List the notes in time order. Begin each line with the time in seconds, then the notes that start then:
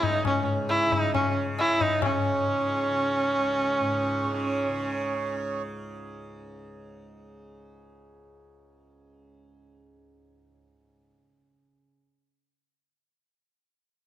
Already playing: C#2 G#2 C#3 E5
0.03 D#4, tabla tin, tabla ge
0.15 D#5
0.25 C#4, tabla na, tabla ge
0.37 G#2 C#5
0.69 E4, tabla na
0.81 E5
0.86 C#3
0.92 D#4, tabla tin, tabla ge
1.14 C#4, tabla na, tabla ge
1.25 C#5
1.29 C#3
1.59 E4, tabla na
1.69 E5
1.75 C#2 D#5
1.81 D#4 E5, tabla tin, tabla ge
2.02 G#2 C#4, tabla na, tabla ge
2.14 C#5
2.47 C#3
2.91 C#3
3.37 C#2
3.80 G#2
4.24 C#3
4.68 C#3